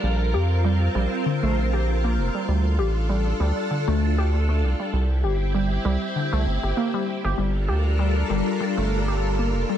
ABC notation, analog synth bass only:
X:1
M:4/4
L:1/16
Q:"Swing 16ths" 1/4=98
K:Gdor
V:1 name="Analog synth bass" clef=bass
B,,,2 F,,4 B,,, z2 B,,,4- B,,, F,,, z | D,,2 A,,,4 D,, z2 D,,4- D,, C,, z | C,,2 G,,,4 C,, z2 C,, G,,, G,,, z3 G,,, | G,,,2 D,,4 G,,, z2 G,,,4- G,,, F,,, z |]